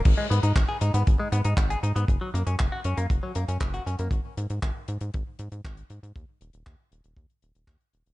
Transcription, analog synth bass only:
X:1
M:4/4
L:1/16
Q:1/4=118
K:G#m
V:1 name="Analog synth bass" clef=bass
G,,, z G,, G,, G,,, z G,, G,, G,,, z G,, G,, G,,,2 G,, G,, | F,,, z F,, F,, F,,, z F,, F,, F,,, z F,, F,, F,,,2 F,, F,, | G,,, z G,, G,, G,,, z G,, G,, G,,, z G,, G,, G,,,2 G,, G,, | D,, z D,,, D,,, D,, z D,,, D,,, D,, z D,,, D,,, D,, z D,,, D,,, |]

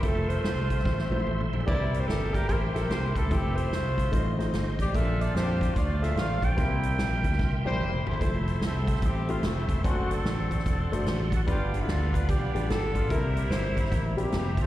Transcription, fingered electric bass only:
X:1
M:4/4
L:1/8
Q:"Swing" 1/4=147
K:F
V:1 name="Fingered electric bass" clef=bass
F,,,2 C,,2 A,,, B,,, A,,, B,,, | C,,2 G,,,2 A,,, B,,, C,, D,, | F,,,2 C,,2 A,,,2 G,,, A,,, | B,,,2 F,,2 D,,2 A,,, B,,, |
C,,2 B,,, D,, C,, B,,, F,,, G,,, | F,,,2 C,,2 A,,,2 F,,, E,,, | ^F,,,2 A,,,2 E,,, F,,, A,,,2 | G,,,2 D,,2 =B,,, A,,, G,,,2 |
C,,2 G,,,2 A,,, B,,, F,,, G,,, |]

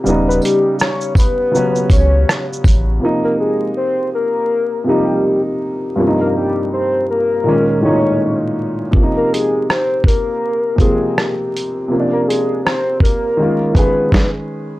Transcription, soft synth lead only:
X:1
M:4/4
L:1/16
Q:"Swing 16ths" 1/4=81
K:Ab
V:1 name="Soft synth lead"
z =B G2 d2 B4 d3 z3 | z B A2 c2 B4 G3 z3 | z B G2 c2 B4 d3 z3 | z B A2 c2 B4 A3 z3 |
z B A2 c2 B4 _c3 z3 |]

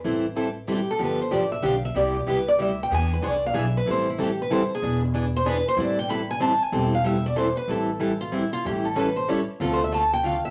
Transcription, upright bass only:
X:1
M:3/4
L:1/8
Q:"Swing" 1/4=188
K:Am
V:1 name="Upright bass" clef=bass
A,,,6 | G,,,2 A,,,2 B,,,2 | C,,2 C,,2 D,,2 | E,,2 C,,2 B,,,2 |
A,,,6 | E,,,6 | A,,,6 | E,,,6 |
A,,,6 | A,,,6 | D,,6 |]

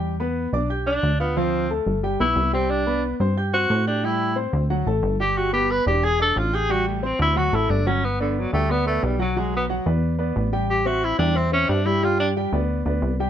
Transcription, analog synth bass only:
X:1
M:4/4
L:1/8
Q:1/4=180
K:G
V:1 name="Analog synth bass" clef=bass
E,,3 B,,,3 D,,2- | D,,3 G,,,2 B,,, C,,2- | C,,3 G,,3 A,,2- | A,,3 D,,2 A,,, G,,,2- |
G,,,3 E,,,3 A,,,2- | A,,,3 D,,2 A,,, G,,,2- | G,,,3 D,,3 B,,,2- | B,,,3 E,,3 A,,,2- |
A,,,3 E,,3 G,,2- | G,,3 D,,2 D,, C,,2 |]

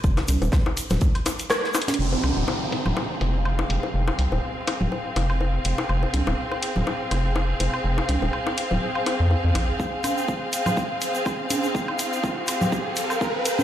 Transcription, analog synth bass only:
X:1
M:4/4
L:1/16
Q:"Swing 16ths" 1/4=123
K:Fm
V:1 name="Analog synth bass" clef=bass
F,,, z C,, E,,, z3 E,,, z8 | F,,, z C,, E,,, z3 E,,, z2 F,,,3 z F,,, z | F,,, z C,, E,,, z3 E,,, z2 F,,,3 z F,,, z | F,,, z C,, E,,, z3 E,,, z2 F,,,3 z F,,, z |
F,,, z C,, E,,, z3 E,,, z3 F,, z F,, B,,, z | z16 | z16 |]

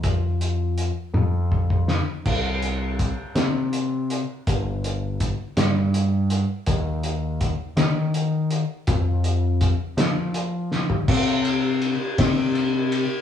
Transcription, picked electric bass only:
X:1
M:6/8
L:1/8
Q:3/8=54
K:Cm
V:1 name="Picked electric bass" clef=bass
F,,3 F,,3 | C,,3 C,3 | G,,,3 G,,3 | E,,3 E,3 |
F,,3 F,3 | C,3 C,3 |]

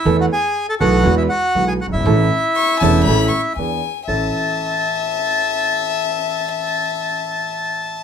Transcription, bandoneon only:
X:1
M:4/4
L:1/16
Q:1/4=120
K:A
V:1 name="Bandoneon"
[Ee] [Ff] [Gg]3 [Aa] [Ff]3 [Ee] [Ff]3 [Gg] [Ff] [Ee]- | [Ee]12 z4 | a16- | a16 |]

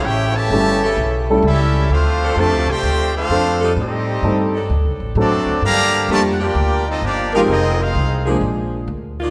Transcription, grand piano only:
X:1
M:4/4
L:1/8
Q:"Swing" 1/4=129
K:Gm
V:1 name="Grand piano"
z2 [G,A,^C=EA] z2 [G,A,CEA] z2 | z2 [F,A,CDA] z3 [F,A,CDA]2 | z2 [G,A,CEA] z3 [^F,A,CDA]2 | z2 [F,G,B,DG] z4 [F,_A,CEG] |
z3 [F,_A,B,D_A]3 z2 |]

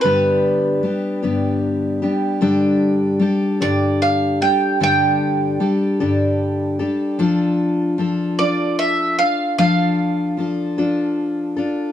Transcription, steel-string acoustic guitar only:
X:1
M:6/8
L:1/8
Q:3/8=50
K:Gmix
V:1 name="Steel-string acoustic guitar"
[G,,D,G,B,DG]2 [G,B,DG] [G,,D,G,B,DG]2 [G,B,DG] | [G,,D,G,DGA]2 [G,DGA] [G,,D,G,DGA]2 [G,DGA] | [G,,D,G,DGA]2 [G,DGA] [G,,D,G,DGA]2 [G,DGA] | [F,DFA]2 [F,DFA] [F,DFA]2 [DFA] |
[F,DFA]2 [F,DFA] [F,DFA]2 [DFA] |]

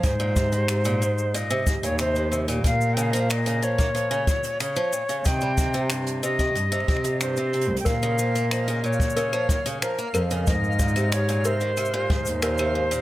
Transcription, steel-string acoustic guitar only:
X:1
M:4/4
L:1/16
Q:1/4=92
K:Bbdor
V:1 name="Steel-string acoustic guitar" clef=bass
A,, B,, C, E, C, B,, A,,2 B,, C, A,, B,, C, E, C, B,, | B,,2 D, F, B,, D, F, B, F, D, B,,2 D, F, B,, D, | E, G, E, C, G,,2 C, E, G,, C, C C, G,, C, C z | B,, D, F, B, F, D, B,,2 D, F, B,, D, F, B, F, D, |
A,,2 B,, C, A,, B,, C, E, C, B,, A,,2 B,, C, A,, B,, |]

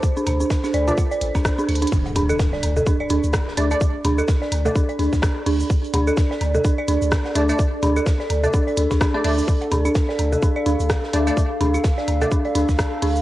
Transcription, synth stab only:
X:1
M:4/4
L:1/16
Q:"Swing 16ths" 1/4=127
K:Dm
V:1 name="Synth stab"
z6 z [A,Dd] z8 | z12 z2 [A,Dd] [A,Dd] | z6 z [A,Dd] z8 | z12 z2 [A,Dd] [A,Dd] |
z6 z [A,Dd] z4 z [A,Dd] [A,Dd] z | z12 z2 [A,Dd] [A,Dd] | z6 z [A,Dd] z8 |]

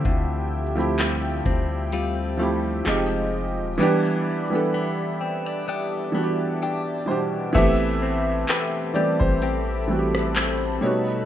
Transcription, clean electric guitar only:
X:1
M:4/4
L:1/16
Q:"Swing 16ths" 1/4=64
K:Am
V:1 name="Clean electric guitar"
D,4 G,2 C2 [G,CF]2 G,2 F,4 | E,4 B,2 C D [B,DG]2 B,2 [DG]4 | A,2 C2 [CGB]2 G2 [CG]4 C2 B,,2 |]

